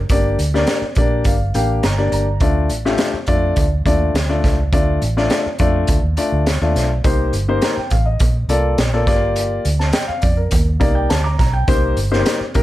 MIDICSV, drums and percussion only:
0, 0, Header, 1, 2, 480
1, 0, Start_track
1, 0, Key_signature, -2, "minor"
1, 0, Tempo, 579151
1, 78, Time_signature, 4, 2, 24, 8
1, 10466, End_track
2, 0, Start_track
2, 0, Title_t, "Drums"
2, 77, Note_on_c, 9, 42, 75
2, 80, Note_on_c, 9, 36, 96
2, 159, Note_off_c, 9, 42, 0
2, 163, Note_off_c, 9, 36, 0
2, 322, Note_on_c, 9, 42, 62
2, 405, Note_off_c, 9, 42, 0
2, 451, Note_on_c, 9, 38, 33
2, 534, Note_off_c, 9, 38, 0
2, 553, Note_on_c, 9, 42, 85
2, 561, Note_on_c, 9, 38, 102
2, 635, Note_off_c, 9, 42, 0
2, 643, Note_off_c, 9, 38, 0
2, 789, Note_on_c, 9, 42, 69
2, 800, Note_on_c, 9, 36, 89
2, 872, Note_off_c, 9, 42, 0
2, 883, Note_off_c, 9, 36, 0
2, 1031, Note_on_c, 9, 42, 80
2, 1038, Note_on_c, 9, 36, 84
2, 1114, Note_off_c, 9, 42, 0
2, 1121, Note_off_c, 9, 36, 0
2, 1278, Note_on_c, 9, 42, 66
2, 1361, Note_off_c, 9, 42, 0
2, 1517, Note_on_c, 9, 42, 86
2, 1522, Note_on_c, 9, 38, 97
2, 1600, Note_off_c, 9, 42, 0
2, 1605, Note_off_c, 9, 38, 0
2, 1758, Note_on_c, 9, 42, 68
2, 1840, Note_off_c, 9, 42, 0
2, 1991, Note_on_c, 9, 42, 72
2, 1994, Note_on_c, 9, 36, 91
2, 2074, Note_off_c, 9, 42, 0
2, 2077, Note_off_c, 9, 36, 0
2, 2234, Note_on_c, 9, 42, 60
2, 2317, Note_off_c, 9, 42, 0
2, 2365, Note_on_c, 9, 38, 29
2, 2448, Note_off_c, 9, 38, 0
2, 2468, Note_on_c, 9, 42, 85
2, 2476, Note_on_c, 9, 38, 103
2, 2551, Note_off_c, 9, 42, 0
2, 2559, Note_off_c, 9, 38, 0
2, 2706, Note_on_c, 9, 42, 71
2, 2717, Note_on_c, 9, 36, 82
2, 2789, Note_off_c, 9, 42, 0
2, 2800, Note_off_c, 9, 36, 0
2, 2951, Note_on_c, 9, 42, 83
2, 2957, Note_on_c, 9, 36, 83
2, 3034, Note_off_c, 9, 42, 0
2, 3040, Note_off_c, 9, 36, 0
2, 3196, Note_on_c, 9, 36, 71
2, 3201, Note_on_c, 9, 42, 75
2, 3279, Note_off_c, 9, 36, 0
2, 3284, Note_off_c, 9, 42, 0
2, 3441, Note_on_c, 9, 42, 96
2, 3445, Note_on_c, 9, 38, 100
2, 3524, Note_off_c, 9, 42, 0
2, 3528, Note_off_c, 9, 38, 0
2, 3680, Note_on_c, 9, 36, 81
2, 3682, Note_on_c, 9, 38, 30
2, 3683, Note_on_c, 9, 42, 71
2, 3763, Note_off_c, 9, 36, 0
2, 3765, Note_off_c, 9, 38, 0
2, 3766, Note_off_c, 9, 42, 0
2, 3916, Note_on_c, 9, 42, 75
2, 3917, Note_on_c, 9, 36, 101
2, 3999, Note_off_c, 9, 42, 0
2, 4000, Note_off_c, 9, 36, 0
2, 4158, Note_on_c, 9, 42, 66
2, 4241, Note_off_c, 9, 42, 0
2, 4285, Note_on_c, 9, 38, 31
2, 4368, Note_off_c, 9, 38, 0
2, 4391, Note_on_c, 9, 42, 90
2, 4399, Note_on_c, 9, 38, 97
2, 4474, Note_off_c, 9, 42, 0
2, 4482, Note_off_c, 9, 38, 0
2, 4629, Note_on_c, 9, 42, 66
2, 4640, Note_on_c, 9, 36, 88
2, 4712, Note_off_c, 9, 42, 0
2, 4722, Note_off_c, 9, 36, 0
2, 4868, Note_on_c, 9, 42, 92
2, 4878, Note_on_c, 9, 36, 89
2, 4951, Note_off_c, 9, 42, 0
2, 4961, Note_off_c, 9, 36, 0
2, 5113, Note_on_c, 9, 42, 71
2, 5196, Note_off_c, 9, 42, 0
2, 5358, Note_on_c, 9, 42, 87
2, 5362, Note_on_c, 9, 38, 87
2, 5441, Note_off_c, 9, 42, 0
2, 5445, Note_off_c, 9, 38, 0
2, 5601, Note_on_c, 9, 38, 33
2, 5602, Note_on_c, 9, 42, 65
2, 5684, Note_off_c, 9, 38, 0
2, 5685, Note_off_c, 9, 42, 0
2, 5836, Note_on_c, 9, 42, 78
2, 5839, Note_on_c, 9, 36, 98
2, 5919, Note_off_c, 9, 42, 0
2, 5921, Note_off_c, 9, 36, 0
2, 6074, Note_on_c, 9, 42, 63
2, 6157, Note_off_c, 9, 42, 0
2, 6312, Note_on_c, 9, 42, 87
2, 6319, Note_on_c, 9, 38, 102
2, 6394, Note_off_c, 9, 42, 0
2, 6402, Note_off_c, 9, 38, 0
2, 6550, Note_on_c, 9, 42, 64
2, 6560, Note_on_c, 9, 36, 82
2, 6633, Note_off_c, 9, 42, 0
2, 6643, Note_off_c, 9, 36, 0
2, 6792, Note_on_c, 9, 42, 81
2, 6800, Note_on_c, 9, 36, 83
2, 6875, Note_off_c, 9, 42, 0
2, 6883, Note_off_c, 9, 36, 0
2, 7037, Note_on_c, 9, 42, 71
2, 7120, Note_off_c, 9, 42, 0
2, 7277, Note_on_c, 9, 42, 96
2, 7281, Note_on_c, 9, 38, 95
2, 7360, Note_off_c, 9, 42, 0
2, 7364, Note_off_c, 9, 38, 0
2, 7518, Note_on_c, 9, 36, 95
2, 7520, Note_on_c, 9, 38, 31
2, 7521, Note_on_c, 9, 42, 66
2, 7601, Note_off_c, 9, 36, 0
2, 7603, Note_off_c, 9, 38, 0
2, 7604, Note_off_c, 9, 42, 0
2, 7756, Note_on_c, 9, 42, 82
2, 7839, Note_off_c, 9, 42, 0
2, 7997, Note_on_c, 9, 42, 69
2, 8080, Note_off_c, 9, 42, 0
2, 8122, Note_on_c, 9, 38, 33
2, 8205, Note_off_c, 9, 38, 0
2, 8226, Note_on_c, 9, 42, 88
2, 8234, Note_on_c, 9, 38, 105
2, 8309, Note_off_c, 9, 42, 0
2, 8317, Note_off_c, 9, 38, 0
2, 8468, Note_on_c, 9, 42, 68
2, 8480, Note_on_c, 9, 36, 89
2, 8550, Note_off_c, 9, 42, 0
2, 8563, Note_off_c, 9, 36, 0
2, 8709, Note_on_c, 9, 42, 92
2, 8719, Note_on_c, 9, 36, 84
2, 8792, Note_off_c, 9, 42, 0
2, 8802, Note_off_c, 9, 36, 0
2, 8957, Note_on_c, 9, 36, 86
2, 8957, Note_on_c, 9, 42, 73
2, 9040, Note_off_c, 9, 36, 0
2, 9040, Note_off_c, 9, 42, 0
2, 9201, Note_on_c, 9, 42, 93
2, 9205, Note_on_c, 9, 38, 93
2, 9283, Note_off_c, 9, 42, 0
2, 9288, Note_off_c, 9, 38, 0
2, 9442, Note_on_c, 9, 38, 31
2, 9443, Note_on_c, 9, 36, 94
2, 9443, Note_on_c, 9, 42, 70
2, 9525, Note_off_c, 9, 36, 0
2, 9525, Note_off_c, 9, 38, 0
2, 9526, Note_off_c, 9, 42, 0
2, 9677, Note_on_c, 9, 42, 76
2, 9680, Note_on_c, 9, 36, 111
2, 9760, Note_off_c, 9, 42, 0
2, 9763, Note_off_c, 9, 36, 0
2, 9918, Note_on_c, 9, 42, 60
2, 10001, Note_off_c, 9, 42, 0
2, 10051, Note_on_c, 9, 38, 33
2, 10133, Note_off_c, 9, 38, 0
2, 10158, Note_on_c, 9, 42, 95
2, 10166, Note_on_c, 9, 38, 106
2, 10241, Note_off_c, 9, 42, 0
2, 10249, Note_off_c, 9, 38, 0
2, 10397, Note_on_c, 9, 42, 73
2, 10404, Note_on_c, 9, 36, 87
2, 10466, Note_off_c, 9, 36, 0
2, 10466, Note_off_c, 9, 42, 0
2, 10466, End_track
0, 0, End_of_file